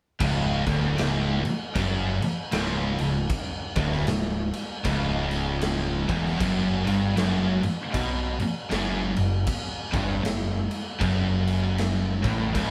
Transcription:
0.20 C#1 C#2, kick, crash
0.66 D1 D2, kick, crash
0.98 C#1 C#2, snare, crash
1.44 muted overdriven electric guitar stroke, muted distorted electric guitar stroke, muted picked electric bass stroke, crash
1.75 F#1 F#2, kick, crash
2.21 muted distorted electric guitar stroke, muted overdriven electric guitar stroke, muted picked electric bass stroke, crash
2.52 C#1 C#2, snare, crash
2.99 C#1 C#2, crash
3.29 kick, crash
3.76 D1 D2, kick, crash
3.92 snare
4.07 C#1 C#2, snare, crash
4.54 crash
4.84 C#1 C#2, kick, crash
5.31 crash
5.61 snare, crash
6.08 E1 E2, kick, crash
6.26 snare
6.40 F#1 F#2, kick, crash
6.87 G1 G2, crash
7.17 F#1 F#2, snare, crash
7.62 muted overdriven electric guitar stroke, muted distorted electric guitar stroke, muted picked electric bass stroke, crash
7.94 B1 B2, kick, crash
8.40 muted overdriven electric guitar stroke, muted distorted electric guitar stroke, muted picked electric bass stroke, crash
8.71 F#1 F#2, snare, crash
9.16 F#1 F#2, crash
9.47 kick, crash
9.93 G1 G2, kick, crash
10.24 F#1 F#2, snare, crash
10.71 crash
11.01 F#1 F#2, kick, crash
11.47 crash
11.78 snare, crash
12.24 A1 A2, kick, crash
12.54 C#1 C#2, kick, crash

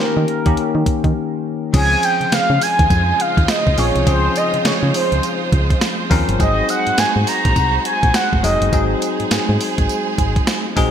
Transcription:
Already playing: D#3 A#3 C#4 G4
0.00 A#4
0.17 D#3
0.28 closed hi-hat
0.45 D#2 D#3 A#3 C#4 G4, kick, closed hi-hat
0.57 closed hi-hat
0.75 D#3
0.86 kick, closed hi-hat
1.04 D#3, kick, closed hi-hat
1.73 C#2 C#3 F3 G#3 C4 C#4 D#4 F4 G#4 C5 G#5, kick, closed hi-hat, crash, tambourine
2.03 G5, closed hi-hat, tambourine
2.21 C#3, closed hi-hat
2.32 C#3 F5, snare, closed hi-hat, tambourine
2.50 C#3
2.61 G#5, open hi-hat, tambourine
2.79 D#2, kick, closed hi-hat
2.90 F2, kick, closed hi-hat, tambourine
3.20 F5, closed hi-hat
3.37 D#2, kick, closed hi-hat
3.48 D#5, snare, closed hi-hat, tambourine
3.67 C#2, kick
3.77 A#1 F3 C4 C#4 G#4 C#5, open hi-hat, tambourine
3.96 C2, closed hi-hat
4.06 C#2 F3 C4 C#4 G#4 C5, kick, closed hi-hat, tambourine
4.36 D#5, closed hi-hat, tambourine
4.54 C#3, closed hi-hat
4.65 C#3 C#5, snare, closed hi-hat, tambourine
4.83 C#3
4.94 C5, open hi-hat, tambourine
5.12 C#2, closed hi-hat
5.23 closed hi-hat, tambourine
5.52 C#2, kick, closed hi-hat
5.70 kick, closed hi-hat
5.81 snare, closed hi-hat, tambourine
6.10 D#2 F3 C4 C#4 A#4, kick, open hi-hat, tambourine
6.29 G1, closed hi-hat
6.39 G#1 F#3 G#3 C4 D#4 F#4 G#4 D#5, kick, closed hi-hat, tambourine
6.69 F#5, closed hi-hat, tambourine
6.87 G#2, closed hi-hat
6.98 G#2 G#5, snare, closed hi-hat, tambourine
7.16 G#2
7.27 A#5, open hi-hat, tambourine
7.45 A#1, kick, closed hi-hat
7.56 C2, kick, closed hi-hat, tambourine
7.85 G#5, closed hi-hat
8.03 A#1, kick, closed hi-hat
8.14 F#5, snare, closed hi-hat, tambourine
8.33 G#1, kick
8.43 F1 F#3 C4 D#4 G#4 D#5, open hi-hat, tambourine
8.61 F#1, closed hi-hat
8.72 G#1 F#3 C4 D#4 G#4, kick, closed hi-hat, tambourine
9.02 closed hi-hat, tambourine
9.20 G#2, closed hi-hat
9.31 G#2, snare, closed hi-hat, tambourine
9.49 G#2
9.61 open hi-hat, tambourine
9.78 G#1, kick, closed hi-hat
9.89 closed hi-hat, tambourine
10.18 G#1, kick, closed hi-hat
10.36 kick, closed hi-hat
10.47 snare, closed hi-hat, tambourine
10.76 A#1 F#3 C4 D#4 G#4, kick, open hi-hat, tambourine

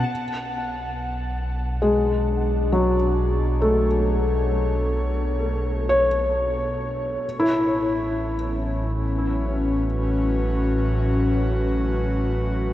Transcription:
Already playing: B2 B3 F#5 A5
0.09 B1
1.42 D4
1.82 G#3
2.73 F#3 C#5
3.62 A3
5.89 C#5
7.23 A1 A2
7.40 E4
7.69 F#3
7.80 C#4
8.80 F#4 B4

